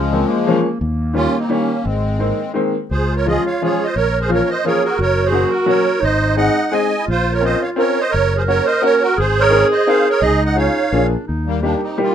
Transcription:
Already playing: C#2 F3 G#3 C#4
0.12 F3 G#3 A#3 C4 C#4
0.28 A#3
0.47 F3 G#3 A#3 C#4
0.80 D#2 A#3
1.14 D#3 G3 A#3 C#4 F4
1.38 C4 D#4
1.49 D#3 G3 A#3 C#4
1.83 G#1 G#3 C4
2.19 D#3 G#3 A#3 C4
2.54 D#3 G#3 A#3 C4
2.91 C#2 F4 G#4 C5
3.16 A#4 C#5
3.26 F3 G#3 C#4 F4 G#4 D#5
3.46 C#5 F5
3.62 F3 G#3 C#4 F4 G#4 C#5
3.84 C5 D#5
3.96 A#1 A#4 C#5
4.21 G#4 C5
4.29 F3 A#3 C#4 F4
4.34 A#4 C#5
4.49 C5 D#5
4.64 F3 A#3 C#4 F4 G#4 A#4 C#5
4.84 F#4 A#4
4.99 F#1 F#4 A#4 C#5
5.26 G#4 C5
5.32 F#3 A#3 C#4 F#4
5.50 F#4 A#4
5.66 F#3 A#3 C#4 F#4 A#4 C#5
6.00 G#1 D#4 C5 D#5
6.36 G#3 C4 D#4 G#4 D#5 F#5
6.71 G#3 C4 D#4 G#4 D#5 G#5
6.99 E4
7.06 A#1 F4
7.10 F4 C5
7.32 A#4 C#5
7.41 C4 C#4 F4 A#4 C5 D#5
7.62 C#5 F5
7.76 C4 C#4 F4 A#4 C#5
8.00 C5 D#5
8.11 F#1 A#4 C#5
8.37 G#4 C5
8.48 A#3 C#4 F#4 A#4 C#5
8.65 C5 D#5
8.82 A#3 C#4 F#4 A#4
8.86 C#5
9.02 F#4 A#4
9.17 G#1 G#4 C5
9.39 A#4 C#5
9.50 C4 D#4 G#4 A#4
9.71 C5 D#5
9.87 C4 D#4 G#4 A#4 C5 F5
10.09 A#4 C#5
10.20 C#2 D#4 G#4 D#5
10.45 D#5 F#5
10.55 C#4 D#4 F4 G#4 C#5 F5
10.92 A#1 A#3 D4 F4 G#4
11.27 D#2 D#4
11.46 G3 A#3
11.61 G3 A#3 D4 D#4 G4
11.82 C4 D#4
11.98 G3 A#3 D#4 G4
12.02 A#3 F4

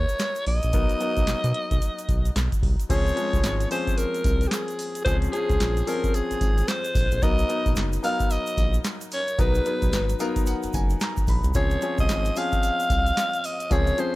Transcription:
Already playing: F#3 B3 D#4 A#4 C#5
0.09 closed hi-hat, shaker
0.19 snare, clap, closed hi-hat, shaker
0.35 closed hi-hat, shaker
0.46 A#1 D#5, open hi-hat
0.63 A#1, closed hi-hat, shaker
0.73 B1 F#3 B3 D#4 A#4, kick, closed hi-hat, shaker
0.89 closed hi-hat, shaker
1.00 F#3 B3 D#4 A#4, closed hi-hat, shaker
1.17 B1, kick, closed hi-hat, shaker
1.27 B2, snare, clap, closed hi-hat, shaker
1.44 B2, closed hi-hat, shaker
1.54 closed hi-hat
1.71 B1, kick, closed hi-hat, shaker
1.82 closed hi-hat, shaker
1.99 closed hi-hat, shaker
2.09 B1, kick, closed hi-hat, shaker
2.25 closed hi-hat, shaker
2.36 B1, snare, clap, closed hi-hat, shaker
2.52 kick, closed hi-hat, shaker
2.63 C2, kick, open hi-hat
2.80 closed hi-hat, shaker
2.89 C#2 F3 C4 C#4 G#4 C#5, kick, closed hi-hat, crash, tambourine, shaker
3.06 closed hi-hat, shaker
3.16 F3 G#3 C#4 G#4, closed hi-hat, shaker
3.33 C2, kick, closed hi-hat, shaker
3.44 G#1, snare, clap, closed hi-hat, tambourine, shaker
3.60 closed hi-hat, shaker
3.70 F3 C4 C#4 G#4 C5, open hi-hat, tambourine, shaker
3.87 kick, closed hi-hat, shaker
3.98 A#4, closed hi-hat, tambourine, shaker
4.14 closed hi-hat, shaker
4.24 C2, kick, closed hi-hat, tambourine, shaker
4.41 closed hi-hat, shaker
4.47 G4 G#4, snare, tambourine
4.51 clap, closed hi-hat, shaker
4.68 closed hi-hat, shaker
4.79 open hi-hat, tambourine, shaker
4.95 closed hi-hat, shaker
5.05 C#2 F3 C4 C#4 G#4 C5, kick, closed hi-hat, tambourine, shaker
5.22 closed hi-hat, shaker
5.32 F3 C4 C#4 G#4, closed hi-hat, shaker
5.49 C#2, kick, closed hi-hat, shaker
5.60 A#1, snare, clap, closed hi-hat, tambourine, shaker
5.77 closed hi-hat, shaker
5.87 F3 C4 C#4 G#4 A#4, open hi-hat, tambourine, shaker
6.04 kick, closed hi-hat, shaker
6.14 G#4, closed hi-hat, tambourine, shaker
6.31 G#1, closed hi-hat, shaker
6.41 G#1, kick, closed hi-hat, tambourine, shaker
6.58 closed hi-hat, shaker
6.68 C5, snare, clap, closed hi-hat, tambourine, shaker
6.84 closed hi-hat, shaker
6.95 A#1, kick, open hi-hat, tambourine, shaker
7.12 A#1, closed hi-hat, shaker
7.22 B1 F#3 B3 D#4 A#4 D#5, kick, closed hi-hat, tambourine, shaker
7.39 closed hi-hat, shaker
7.48 F#3 B3 D#4 A#4, closed hi-hat, shaker
7.66 A#1, kick, closed hi-hat, shaker
7.76 F#1, snare, clap, closed hi-hat, tambourine, shaker
7.93 closed hi-hat, shaker
8.03 F#3 B3 D#4 A#4 F5, open hi-hat, tambourine, shaker
8.20 kick, closed hi-hat, shaker
8.30 D#5, closed hi-hat, tambourine, shaker
8.46 closed hi-hat, shaker
8.57 A#1, kick, closed hi-hat, tambourine, shaker
8.74 closed hi-hat, shaker
8.84 snare, clap, closed hi-hat, tambourine, shaker
9.01 closed hi-hat, shaker
9.11 C#5, open hi-hat, tambourine, shaker
9.28 closed hi-hat, shaker
9.38 B1 F#3 B3 D#4 A#4 B4, kick, closed hi-hat, tambourine, shaker
9.55 closed hi-hat, shaker
9.65 F#3 B3 D#4 B4, closed hi-hat, shaker
9.82 B1, kick, closed hi-hat, shaker
9.93 G#1, snare, clap, closed hi-hat, tambourine, shaker
10.09 closed hi-hat, shaker
10.19 F#3 B3 D#4 A#4 F5, closed hi-hat, tambourine, shaker
10.36 kick, closed hi-hat, shaker
10.46 F#5, closed hi-hat, tambourine, shaker
10.63 F#1, closed hi-hat, shaker
10.73 F#1 G#5, kick, closed hi-hat, tambourine, shaker
10.90 closed hi-hat, shaker
11.00 A#5, snare, clap, closed hi-hat, tambourine, shaker
11.17 kick, closed hi-hat, shaker
11.27 A#1 B5, kick, open hi-hat, tambourine, shaker
11.44 C2, closed hi-hat, shaker
11.54 C#2 F3 C4 C#4 G#4 C#5, kick, closed hi-hat, tambourine, shaker
11.70 closed hi-hat, shaker
11.82 F3 C4 C#4 G#4, closed hi-hat, shaker
11.98 C2 D#5, kick, closed hi-hat, shaker
12.09 G#1, snare, clap, closed hi-hat, tambourine, shaker
12.25 closed hi-hat, shaker
12.36 F3 C4 C#4 G#4 F5, open hi-hat, tambourine, shaker
12.52 kick, closed hi-hat, shaker
12.63 closed hi-hat, tambourine, shaker
12.80 closed hi-hat, shaker
12.90 C2, kick, closed hi-hat, tambourine, shaker
13.06 closed hi-hat, shaker
13.17 snare, clap, closed hi-hat, tambourine, shaker
13.33 closed hi-hat, shaker
13.44 D#5, open hi-hat, tambourine, shaker
13.60 closed hi-hat, shaker
13.70 C#2 F3 C4 C#4 G#4 C#5, kick, closed hi-hat, tambourine, shaker
13.87 closed hi-hat, shaker
13.98 F3 C4 C#4 G#4 C5, closed hi-hat, shaker

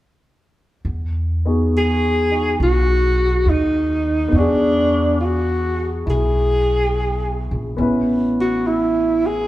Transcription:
0.85 E2
1.45 B3 D#4 F#4 G#4
1.78 G#4
2.31 D#4 F#4
2.60 B1 F#4
3.45 D#2
3.50 D#4
4.28 E2 B3 D4
4.36 D4 F#4 G#4
5.20 F4
5.25 F#4
6.06 B1 E4 G#4
6.10 G#4
7.51 A#1
7.77 A1 B3 C#4 E4
7.82 B4
8.41 F#4
8.67 E4
9.26 G#4

